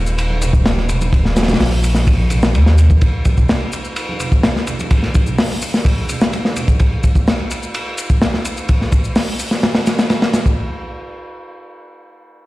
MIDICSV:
0, 0, Header, 1, 3, 480
1, 0, Start_track
1, 0, Tempo, 472441
1, 1145, Time_signature, 4, 2, 24, 8
1, 12662, End_track
2, 0, Start_track
2, 0, Title_t, "Sub bass"
2, 0, Program_c, 0, 38
2, 0, Note_on_c, 0, 27, 101
2, 1575, Note_off_c, 0, 27, 0
2, 1625, Note_on_c, 0, 34, 97
2, 2585, Note_on_c, 0, 39, 75
2, 2600, Note_off_c, 0, 34, 0
2, 3015, Note_off_c, 0, 39, 0
2, 12662, End_track
3, 0, Start_track
3, 0, Title_t, "Drums"
3, 66, Note_on_c, 9, 82, 41
3, 168, Note_off_c, 9, 82, 0
3, 186, Note_on_c, 9, 82, 30
3, 187, Note_on_c, 9, 51, 84
3, 287, Note_off_c, 9, 82, 0
3, 288, Note_off_c, 9, 51, 0
3, 303, Note_on_c, 9, 63, 89
3, 404, Note_off_c, 9, 63, 0
3, 422, Note_on_c, 9, 51, 66
3, 426, Note_on_c, 9, 82, 78
3, 427, Note_on_c, 9, 64, 78
3, 435, Note_on_c, 9, 62, 55
3, 523, Note_off_c, 9, 51, 0
3, 528, Note_off_c, 9, 82, 0
3, 529, Note_off_c, 9, 64, 0
3, 537, Note_off_c, 9, 62, 0
3, 543, Note_on_c, 9, 36, 95
3, 549, Note_on_c, 9, 82, 44
3, 644, Note_off_c, 9, 36, 0
3, 650, Note_off_c, 9, 82, 0
3, 665, Note_on_c, 9, 63, 64
3, 666, Note_on_c, 9, 38, 112
3, 666, Note_on_c, 9, 51, 76
3, 666, Note_on_c, 9, 82, 31
3, 766, Note_off_c, 9, 63, 0
3, 767, Note_off_c, 9, 82, 0
3, 768, Note_off_c, 9, 38, 0
3, 768, Note_off_c, 9, 51, 0
3, 786, Note_on_c, 9, 62, 50
3, 790, Note_on_c, 9, 38, 45
3, 888, Note_off_c, 9, 62, 0
3, 892, Note_off_c, 9, 38, 0
3, 904, Note_on_c, 9, 51, 67
3, 904, Note_on_c, 9, 62, 52
3, 905, Note_on_c, 9, 82, 73
3, 906, Note_on_c, 9, 64, 74
3, 1006, Note_off_c, 9, 51, 0
3, 1006, Note_off_c, 9, 62, 0
3, 1007, Note_off_c, 9, 82, 0
3, 1008, Note_off_c, 9, 64, 0
3, 1028, Note_on_c, 9, 63, 98
3, 1028, Note_on_c, 9, 82, 40
3, 1033, Note_on_c, 9, 51, 40
3, 1130, Note_off_c, 9, 63, 0
3, 1130, Note_off_c, 9, 82, 0
3, 1135, Note_off_c, 9, 51, 0
3, 1145, Note_on_c, 9, 36, 107
3, 1147, Note_on_c, 9, 82, 29
3, 1156, Note_on_c, 9, 51, 80
3, 1246, Note_off_c, 9, 36, 0
3, 1248, Note_off_c, 9, 82, 0
3, 1257, Note_off_c, 9, 51, 0
3, 1273, Note_on_c, 9, 38, 42
3, 1375, Note_off_c, 9, 38, 0
3, 1381, Note_on_c, 9, 63, 101
3, 1385, Note_on_c, 9, 51, 68
3, 1386, Note_on_c, 9, 82, 72
3, 1389, Note_on_c, 9, 38, 86
3, 1451, Note_off_c, 9, 38, 0
3, 1451, Note_on_c, 9, 38, 84
3, 1453, Note_off_c, 9, 51, 0
3, 1453, Note_on_c, 9, 51, 66
3, 1483, Note_off_c, 9, 63, 0
3, 1487, Note_off_c, 9, 82, 0
3, 1503, Note_off_c, 9, 51, 0
3, 1503, Note_on_c, 9, 51, 65
3, 1507, Note_on_c, 9, 64, 78
3, 1508, Note_off_c, 9, 38, 0
3, 1508, Note_on_c, 9, 38, 78
3, 1509, Note_on_c, 9, 82, 39
3, 1559, Note_off_c, 9, 38, 0
3, 1559, Note_on_c, 9, 38, 78
3, 1564, Note_off_c, 9, 51, 0
3, 1564, Note_on_c, 9, 51, 63
3, 1608, Note_off_c, 9, 64, 0
3, 1611, Note_off_c, 9, 82, 0
3, 1626, Note_on_c, 9, 82, 30
3, 1630, Note_on_c, 9, 46, 76
3, 1631, Note_off_c, 9, 38, 0
3, 1631, Note_on_c, 9, 38, 121
3, 1665, Note_off_c, 9, 51, 0
3, 1727, Note_off_c, 9, 82, 0
3, 1732, Note_off_c, 9, 46, 0
3, 1733, Note_off_c, 9, 38, 0
3, 1741, Note_on_c, 9, 63, 58
3, 1745, Note_on_c, 9, 51, 41
3, 1843, Note_off_c, 9, 63, 0
3, 1847, Note_off_c, 9, 51, 0
3, 1864, Note_on_c, 9, 82, 72
3, 1868, Note_on_c, 9, 51, 63
3, 1966, Note_off_c, 9, 82, 0
3, 1970, Note_off_c, 9, 51, 0
3, 1977, Note_on_c, 9, 38, 50
3, 1987, Note_on_c, 9, 82, 41
3, 2079, Note_off_c, 9, 38, 0
3, 2089, Note_off_c, 9, 82, 0
3, 2104, Note_on_c, 9, 36, 102
3, 2104, Note_on_c, 9, 82, 30
3, 2107, Note_on_c, 9, 51, 86
3, 2206, Note_off_c, 9, 36, 0
3, 2206, Note_off_c, 9, 82, 0
3, 2209, Note_off_c, 9, 51, 0
3, 2231, Note_on_c, 9, 63, 82
3, 2332, Note_off_c, 9, 63, 0
3, 2337, Note_on_c, 9, 51, 72
3, 2344, Note_on_c, 9, 82, 71
3, 2346, Note_on_c, 9, 62, 60
3, 2351, Note_on_c, 9, 64, 70
3, 2439, Note_off_c, 9, 51, 0
3, 2445, Note_off_c, 9, 82, 0
3, 2447, Note_off_c, 9, 62, 0
3, 2453, Note_off_c, 9, 64, 0
3, 2465, Note_on_c, 9, 82, 39
3, 2469, Note_on_c, 9, 38, 103
3, 2567, Note_off_c, 9, 82, 0
3, 2570, Note_off_c, 9, 38, 0
3, 2579, Note_on_c, 9, 63, 65
3, 2584, Note_on_c, 9, 82, 30
3, 2589, Note_on_c, 9, 51, 80
3, 2681, Note_off_c, 9, 63, 0
3, 2685, Note_off_c, 9, 82, 0
3, 2690, Note_off_c, 9, 51, 0
3, 2706, Note_on_c, 9, 38, 53
3, 2808, Note_off_c, 9, 38, 0
3, 2823, Note_on_c, 9, 64, 78
3, 2823, Note_on_c, 9, 82, 65
3, 2828, Note_on_c, 9, 51, 66
3, 2924, Note_off_c, 9, 64, 0
3, 2925, Note_off_c, 9, 82, 0
3, 2929, Note_off_c, 9, 51, 0
3, 2945, Note_on_c, 9, 36, 99
3, 2947, Note_on_c, 9, 82, 38
3, 2953, Note_on_c, 9, 62, 61
3, 2958, Note_on_c, 9, 63, 83
3, 3047, Note_off_c, 9, 36, 0
3, 3048, Note_off_c, 9, 82, 0
3, 3055, Note_off_c, 9, 62, 0
3, 3060, Note_off_c, 9, 63, 0
3, 3062, Note_on_c, 9, 51, 91
3, 3065, Note_on_c, 9, 82, 29
3, 3068, Note_on_c, 9, 36, 118
3, 3163, Note_off_c, 9, 51, 0
3, 3167, Note_off_c, 9, 82, 0
3, 3169, Note_off_c, 9, 36, 0
3, 3301, Note_on_c, 9, 51, 63
3, 3305, Note_on_c, 9, 82, 66
3, 3306, Note_on_c, 9, 63, 83
3, 3308, Note_on_c, 9, 36, 93
3, 3403, Note_off_c, 9, 51, 0
3, 3406, Note_off_c, 9, 82, 0
3, 3407, Note_off_c, 9, 63, 0
3, 3410, Note_off_c, 9, 36, 0
3, 3428, Note_on_c, 9, 82, 37
3, 3431, Note_on_c, 9, 36, 84
3, 3431, Note_on_c, 9, 64, 81
3, 3529, Note_off_c, 9, 82, 0
3, 3532, Note_off_c, 9, 36, 0
3, 3532, Note_off_c, 9, 64, 0
3, 3544, Note_on_c, 9, 82, 28
3, 3549, Note_on_c, 9, 38, 106
3, 3554, Note_on_c, 9, 51, 81
3, 3645, Note_off_c, 9, 82, 0
3, 3650, Note_off_c, 9, 38, 0
3, 3655, Note_off_c, 9, 51, 0
3, 3672, Note_on_c, 9, 63, 62
3, 3773, Note_off_c, 9, 63, 0
3, 3783, Note_on_c, 9, 82, 67
3, 3790, Note_on_c, 9, 51, 63
3, 3885, Note_off_c, 9, 82, 0
3, 3892, Note_off_c, 9, 51, 0
3, 3906, Note_on_c, 9, 82, 39
3, 4007, Note_off_c, 9, 82, 0
3, 4026, Note_on_c, 9, 51, 93
3, 4026, Note_on_c, 9, 82, 29
3, 4127, Note_off_c, 9, 51, 0
3, 4127, Note_off_c, 9, 82, 0
3, 4157, Note_on_c, 9, 63, 84
3, 4258, Note_off_c, 9, 63, 0
3, 4266, Note_on_c, 9, 51, 64
3, 4267, Note_on_c, 9, 82, 69
3, 4268, Note_on_c, 9, 64, 72
3, 4367, Note_off_c, 9, 51, 0
3, 4369, Note_off_c, 9, 64, 0
3, 4369, Note_off_c, 9, 82, 0
3, 4388, Note_on_c, 9, 36, 84
3, 4389, Note_on_c, 9, 82, 40
3, 4490, Note_off_c, 9, 36, 0
3, 4490, Note_off_c, 9, 82, 0
3, 4505, Note_on_c, 9, 38, 110
3, 4507, Note_on_c, 9, 51, 80
3, 4509, Note_on_c, 9, 82, 30
3, 4512, Note_on_c, 9, 63, 61
3, 4607, Note_off_c, 9, 38, 0
3, 4609, Note_off_c, 9, 51, 0
3, 4610, Note_off_c, 9, 82, 0
3, 4614, Note_off_c, 9, 63, 0
3, 4635, Note_on_c, 9, 38, 41
3, 4737, Note_off_c, 9, 38, 0
3, 4745, Note_on_c, 9, 51, 70
3, 4747, Note_on_c, 9, 82, 67
3, 4750, Note_on_c, 9, 64, 65
3, 4847, Note_off_c, 9, 51, 0
3, 4848, Note_off_c, 9, 82, 0
3, 4852, Note_off_c, 9, 64, 0
3, 4869, Note_on_c, 9, 63, 88
3, 4870, Note_on_c, 9, 82, 36
3, 4882, Note_on_c, 9, 51, 44
3, 4971, Note_off_c, 9, 63, 0
3, 4972, Note_off_c, 9, 82, 0
3, 4983, Note_off_c, 9, 51, 0
3, 4984, Note_on_c, 9, 51, 93
3, 4988, Note_on_c, 9, 36, 102
3, 4989, Note_on_c, 9, 82, 28
3, 5086, Note_off_c, 9, 51, 0
3, 5089, Note_off_c, 9, 36, 0
3, 5091, Note_off_c, 9, 82, 0
3, 5107, Note_on_c, 9, 38, 34
3, 5208, Note_off_c, 9, 38, 0
3, 5219, Note_on_c, 9, 63, 93
3, 5229, Note_on_c, 9, 82, 68
3, 5232, Note_on_c, 9, 51, 67
3, 5236, Note_on_c, 9, 36, 89
3, 5320, Note_off_c, 9, 63, 0
3, 5331, Note_off_c, 9, 82, 0
3, 5334, Note_off_c, 9, 51, 0
3, 5337, Note_off_c, 9, 36, 0
3, 5350, Note_on_c, 9, 82, 39
3, 5352, Note_on_c, 9, 64, 79
3, 5451, Note_off_c, 9, 82, 0
3, 5454, Note_off_c, 9, 64, 0
3, 5468, Note_on_c, 9, 82, 29
3, 5471, Note_on_c, 9, 38, 110
3, 5471, Note_on_c, 9, 46, 72
3, 5570, Note_off_c, 9, 82, 0
3, 5572, Note_off_c, 9, 46, 0
3, 5573, Note_off_c, 9, 38, 0
3, 5596, Note_on_c, 9, 63, 62
3, 5603, Note_on_c, 9, 51, 44
3, 5698, Note_off_c, 9, 63, 0
3, 5705, Note_off_c, 9, 51, 0
3, 5707, Note_on_c, 9, 82, 69
3, 5714, Note_on_c, 9, 51, 62
3, 5809, Note_off_c, 9, 82, 0
3, 5815, Note_off_c, 9, 51, 0
3, 5831, Note_on_c, 9, 82, 39
3, 5832, Note_on_c, 9, 38, 56
3, 5933, Note_off_c, 9, 38, 0
3, 5933, Note_off_c, 9, 82, 0
3, 5944, Note_on_c, 9, 36, 97
3, 5949, Note_on_c, 9, 82, 27
3, 5952, Note_on_c, 9, 51, 91
3, 6045, Note_off_c, 9, 36, 0
3, 6051, Note_off_c, 9, 82, 0
3, 6053, Note_off_c, 9, 51, 0
3, 6078, Note_on_c, 9, 63, 75
3, 6180, Note_off_c, 9, 63, 0
3, 6188, Note_on_c, 9, 64, 66
3, 6188, Note_on_c, 9, 82, 68
3, 6190, Note_on_c, 9, 51, 60
3, 6290, Note_off_c, 9, 64, 0
3, 6290, Note_off_c, 9, 82, 0
3, 6291, Note_off_c, 9, 51, 0
3, 6309, Note_on_c, 9, 82, 41
3, 6315, Note_on_c, 9, 38, 107
3, 6411, Note_off_c, 9, 82, 0
3, 6417, Note_off_c, 9, 38, 0
3, 6429, Note_on_c, 9, 82, 28
3, 6430, Note_on_c, 9, 63, 52
3, 6433, Note_on_c, 9, 51, 82
3, 6530, Note_off_c, 9, 82, 0
3, 6531, Note_off_c, 9, 63, 0
3, 6535, Note_off_c, 9, 51, 0
3, 6554, Note_on_c, 9, 38, 50
3, 6655, Note_off_c, 9, 38, 0
3, 6667, Note_on_c, 9, 51, 68
3, 6667, Note_on_c, 9, 82, 65
3, 6671, Note_on_c, 9, 64, 70
3, 6769, Note_off_c, 9, 51, 0
3, 6769, Note_off_c, 9, 82, 0
3, 6772, Note_off_c, 9, 64, 0
3, 6785, Note_on_c, 9, 63, 78
3, 6787, Note_on_c, 9, 36, 84
3, 6790, Note_on_c, 9, 82, 37
3, 6887, Note_off_c, 9, 63, 0
3, 6889, Note_off_c, 9, 36, 0
3, 6891, Note_off_c, 9, 82, 0
3, 6904, Note_on_c, 9, 51, 77
3, 6907, Note_on_c, 9, 82, 28
3, 6912, Note_on_c, 9, 36, 106
3, 7005, Note_off_c, 9, 51, 0
3, 7009, Note_off_c, 9, 82, 0
3, 7013, Note_off_c, 9, 36, 0
3, 7148, Note_on_c, 9, 82, 70
3, 7149, Note_on_c, 9, 51, 62
3, 7151, Note_on_c, 9, 36, 88
3, 7249, Note_off_c, 9, 82, 0
3, 7251, Note_off_c, 9, 51, 0
3, 7253, Note_off_c, 9, 36, 0
3, 7269, Note_on_c, 9, 36, 86
3, 7270, Note_on_c, 9, 82, 40
3, 7371, Note_off_c, 9, 36, 0
3, 7372, Note_off_c, 9, 82, 0
3, 7390, Note_on_c, 9, 82, 29
3, 7393, Note_on_c, 9, 38, 107
3, 7397, Note_on_c, 9, 51, 80
3, 7491, Note_off_c, 9, 82, 0
3, 7495, Note_off_c, 9, 38, 0
3, 7498, Note_off_c, 9, 51, 0
3, 7627, Note_on_c, 9, 82, 69
3, 7632, Note_on_c, 9, 51, 62
3, 7729, Note_off_c, 9, 82, 0
3, 7734, Note_off_c, 9, 51, 0
3, 7750, Note_on_c, 9, 82, 39
3, 7852, Note_off_c, 9, 82, 0
3, 7867, Note_on_c, 9, 82, 28
3, 7868, Note_on_c, 9, 51, 92
3, 7968, Note_off_c, 9, 82, 0
3, 7969, Note_off_c, 9, 51, 0
3, 8106, Note_on_c, 9, 82, 72
3, 8108, Note_on_c, 9, 51, 61
3, 8208, Note_off_c, 9, 82, 0
3, 8209, Note_off_c, 9, 51, 0
3, 8227, Note_on_c, 9, 82, 39
3, 8229, Note_on_c, 9, 36, 92
3, 8329, Note_off_c, 9, 82, 0
3, 8330, Note_off_c, 9, 36, 0
3, 8346, Note_on_c, 9, 82, 29
3, 8347, Note_on_c, 9, 38, 111
3, 8356, Note_on_c, 9, 51, 74
3, 8448, Note_off_c, 9, 82, 0
3, 8449, Note_off_c, 9, 38, 0
3, 8457, Note_off_c, 9, 51, 0
3, 8472, Note_on_c, 9, 38, 49
3, 8573, Note_off_c, 9, 38, 0
3, 8586, Note_on_c, 9, 82, 68
3, 8587, Note_on_c, 9, 51, 73
3, 8688, Note_off_c, 9, 51, 0
3, 8688, Note_off_c, 9, 82, 0
3, 8707, Note_on_c, 9, 82, 39
3, 8715, Note_on_c, 9, 51, 37
3, 8809, Note_off_c, 9, 82, 0
3, 8817, Note_off_c, 9, 51, 0
3, 8825, Note_on_c, 9, 51, 81
3, 8826, Note_on_c, 9, 82, 30
3, 8832, Note_on_c, 9, 36, 106
3, 8927, Note_off_c, 9, 51, 0
3, 8927, Note_off_c, 9, 82, 0
3, 8933, Note_off_c, 9, 36, 0
3, 8955, Note_on_c, 9, 38, 34
3, 9057, Note_off_c, 9, 38, 0
3, 9065, Note_on_c, 9, 82, 72
3, 9066, Note_on_c, 9, 51, 66
3, 9067, Note_on_c, 9, 36, 93
3, 9167, Note_off_c, 9, 51, 0
3, 9167, Note_off_c, 9, 82, 0
3, 9168, Note_off_c, 9, 36, 0
3, 9186, Note_on_c, 9, 82, 39
3, 9288, Note_off_c, 9, 82, 0
3, 9302, Note_on_c, 9, 46, 74
3, 9305, Note_on_c, 9, 38, 107
3, 9305, Note_on_c, 9, 82, 32
3, 9404, Note_off_c, 9, 46, 0
3, 9407, Note_off_c, 9, 38, 0
3, 9407, Note_off_c, 9, 82, 0
3, 9432, Note_on_c, 9, 51, 38
3, 9533, Note_off_c, 9, 51, 0
3, 9543, Note_on_c, 9, 82, 73
3, 9546, Note_on_c, 9, 51, 60
3, 9645, Note_off_c, 9, 82, 0
3, 9647, Note_off_c, 9, 51, 0
3, 9664, Note_on_c, 9, 38, 54
3, 9665, Note_on_c, 9, 82, 42
3, 9766, Note_off_c, 9, 38, 0
3, 9767, Note_off_c, 9, 82, 0
3, 9783, Note_on_c, 9, 82, 28
3, 9787, Note_on_c, 9, 38, 107
3, 9787, Note_on_c, 9, 51, 82
3, 9885, Note_off_c, 9, 82, 0
3, 9888, Note_off_c, 9, 38, 0
3, 9889, Note_off_c, 9, 51, 0
3, 9902, Note_on_c, 9, 38, 107
3, 9905, Note_on_c, 9, 51, 70
3, 10003, Note_off_c, 9, 38, 0
3, 10007, Note_off_c, 9, 51, 0
3, 10023, Note_on_c, 9, 82, 73
3, 10027, Note_on_c, 9, 51, 81
3, 10031, Note_on_c, 9, 38, 88
3, 10125, Note_off_c, 9, 82, 0
3, 10129, Note_off_c, 9, 51, 0
3, 10132, Note_off_c, 9, 38, 0
3, 10145, Note_on_c, 9, 82, 41
3, 10148, Note_on_c, 9, 38, 100
3, 10152, Note_on_c, 9, 51, 73
3, 10247, Note_off_c, 9, 82, 0
3, 10249, Note_off_c, 9, 38, 0
3, 10253, Note_off_c, 9, 51, 0
3, 10258, Note_on_c, 9, 51, 70
3, 10263, Note_on_c, 9, 38, 90
3, 10266, Note_on_c, 9, 82, 31
3, 10360, Note_off_c, 9, 51, 0
3, 10365, Note_off_c, 9, 38, 0
3, 10367, Note_off_c, 9, 82, 0
3, 10384, Note_on_c, 9, 51, 67
3, 10386, Note_on_c, 9, 38, 101
3, 10485, Note_off_c, 9, 51, 0
3, 10487, Note_off_c, 9, 38, 0
3, 10499, Note_on_c, 9, 51, 69
3, 10501, Note_on_c, 9, 38, 96
3, 10504, Note_on_c, 9, 82, 71
3, 10601, Note_off_c, 9, 51, 0
3, 10603, Note_off_c, 9, 38, 0
3, 10605, Note_off_c, 9, 82, 0
3, 10625, Note_on_c, 9, 36, 78
3, 10627, Note_on_c, 9, 82, 38
3, 10727, Note_off_c, 9, 36, 0
3, 10729, Note_off_c, 9, 82, 0
3, 12662, End_track
0, 0, End_of_file